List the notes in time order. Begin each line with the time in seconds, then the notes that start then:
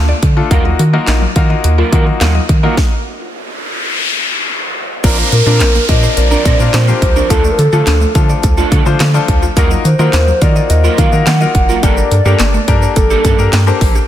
Already playing: D2 A3 D4 F4 A4
0.08 D5, muted clean electric guitar stroke
0.23 D3, kick, closed hi-hat
0.37 A3 D4 F4 A4, muted clean electric guitar stroke
0.51 D#2 F#3 A#3 D#4 F4 F#4 A#4 F5, kick, closed hi-hat
0.65 D#2 D#5, muted clean electric guitar stroke
0.79 D#3 F#4, muted clean electric guitar stroke, closed hi-hat
0.93 F#3 A#3 D#4 F4 F#4 A#4
1.07 A#1 D#4, muted clean electric guitar stroke, snare, clap, closed hi-hat
1.22 F#3, muted clean electric guitar stroke
1.36 D#3 A#3 D#4 F4 F#4 F5, kick, closed hi-hat
1.50 D#5, muted clean electric guitar stroke
1.64 D#2 F#4, muted clean electric guitar stroke, closed hi-hat
1.78 F#3 A#3 F4 A#4
1.92 D#3 F#3 A#3 D#4 F4 F#4 A#4, kick, closed hi-hat
2.06 F#3, muted clean electric guitar stroke
2.20 D#2 F#3 A#3 F4 A#4 F5, snare, clap, closed hi-hat
2.35 D#5, muted clean electric guitar stroke
2.49 D#3, muted clean electric guitar stroke, kick, closed hi-hat
2.63 F#3 A#3 D#4 F4 F#4 A#4
2.77 kick, snare, noise sweep
5.04 A#1 F3 A#3 C4 D4 F4 A#4 D5, kick, closed hi-hat, crash, downlifter, shaker
5.18 C5, muted clean electric guitar stroke, shaker
5.32 A#2 A#4, muted clean electric guitar stroke, closed hi-hat, shaker
5.46 A#2 F3 A#3 C4 D4 F4 A#4, shaker
5.60 A#1 C4, snare, clap, closed hi-hat, shaker
5.74 A#3, muted clean electric guitar stroke, shaker
5.89 A#2 A#3 C4 D4 F4 A#4 D5 D#5, kick, closed hi-hat, shaker
6.03 C5, muted clean electric guitar stroke, shaker
6.17 A#1 A#4 D5, muted clean electric guitar stroke, closed hi-hat, shaker
6.31 F3 C4 D4 A#4, shaker
6.45 A#2 F3 C4 D4 A#4, kick, closed hi-hat, shaker
6.59 A#2 A#3 C4 D4 F4 A#4, muted clean electric guitar stroke, shaker
6.73 A#2 F3 C4 D4 A#4 C5 D5, snare, clap, closed hi-hat, shaker
6.88 A#3 C4 D4 F4 G4 C5, muted clean electric guitar stroke, shaker
7.02 C#2, muted clean electric guitar stroke, kick, closed hi-hat
7.16 F3 C4 D4 A#4, shaker
7.30 D2 F3 A3 D4 F4 A4 F5, kick, closed hi-hat, shaker
7.44 D5, muted clean electric guitar stroke, shaker
7.51 A#4
7.58 D3 A4, muted clean electric guitar stroke, closed hi-hat, shaker
7.72 D3 F3 A3 D4 F4 A4, shaker
7.87 D2 D4, muted clean electric guitar stroke, snare, clap, closed hi-hat, shaker
8.01 A3, muted clean electric guitar stroke, shaker
8.15 D3 F3 A3 D4 F4 A4 F5, kick, closed hi-hat, shaker
8.29 D5, muted clean electric guitar stroke, shaker
8.43 D2 A4, muted clean electric guitar stroke, kick, closed hi-hat, shaker
8.57 A3 D4 F4 A4, shaker
8.71 D3 A3 D4 F4 A4, kick, closed hi-hat, shaker
8.86 D3 F3 A3 D4 F4 C5, muted clean electric guitar stroke, shaker
9.00 D3 F5, muted clean electric guitar stroke, snare, clap, closed hi-hat, shaker
9.14 F3 A3 D4 F4 A4 D5, muted clean electric guitar stroke, shaker
9.28 D2, kick, closed hi-hat
9.42 F4, muted clean electric guitar stroke, shaker
9.56 D#2 F#3 A#3 D#4 F4 F#4 A#4 F5, kick, closed hi-hat, shaker
9.71 D#5, muted clean electric guitar stroke, shaker
9.85 D#3 F#4 C5, muted clean electric guitar stroke, closed hi-hat, shaker
9.99 D#3 F#3 A#3 D#4 F4 F#4 A#4, shaker
10.13 D#2 D#4, muted clean electric guitar stroke, snare, clap, closed hi-hat, shaker
10.27 F#3, muted clean electric guitar stroke, shaker
10.41 D#3 A#3 D#4 F4 F#4 A#4 D5 F5, kick, closed hi-hat, shaker
10.56 D#5, muted clean electric guitar stroke, shaker
10.70 D#2 F#4 D#5, muted clean electric guitar stroke, closed hi-hat, shaker
10.84 F#3 A#3 F4 A#4, shaker
10.98 D#3 F#3 A#3 D#4 F4 A#4 F5, kick, closed hi-hat, shaker
11.12 D#3 A#3 D#4 F4 F#4 A#4, muted clean electric guitar stroke, shaker
11.26 D#3 F#3 A#3 F4 A#4 F5 F#5, snare, clap, closed hi-hat, shaker
11.40 A#3 D#4 F4 F#4 A#4 D#5, muted clean electric guitar stroke, shaker
11.55 F#1 F#5, muted clean electric guitar stroke, kick, closed hi-hat
11.69 F#3 A#3 F4 A#4, shaker
11.83 G1 G3 A#3 D4 G4 A4 A#4 D5 G5, kick, closed hi-hat, shaker
11.97 A#4, muted clean electric guitar stroke, shaker
12.11 G2 A4, muted clean electric guitar stroke, closed hi-hat, shaker
12.25 G2 G3 A#3 D4 G4 A4 A#4, shaker
12.39 G1 A#3, muted clean electric guitar stroke, snare, clap, closed hi-hat, shaker
12.54 A3, muted clean electric guitar stroke, shaker
12.68 G2 A#3 D4 G4 A4 A#4 G5, kick, closed hi-hat, shaker
12.82 A#4, muted clean electric guitar stroke, shaker
12.96 G1 A4, muted clean electric guitar stroke, kick, closed hi-hat, shaker
13.10 G3 A#3 D4 G4 A4, shaker
13.24 G2 G3 A#3 D4 A4, kick, closed hi-hat, shaker
13.39 G2 A#3 D4 G4 A4 A#4, muted clean electric guitar stroke, shaker
13.53 G2 G5, muted clean electric guitar stroke, snare, clap, closed hi-hat, shaker
13.67 A#3 D4 G4 A4 A#4 C5, muted clean electric guitar stroke, shaker
13.81 A1, kick, open hi-hat
13.95 G4, muted clean electric guitar stroke, shaker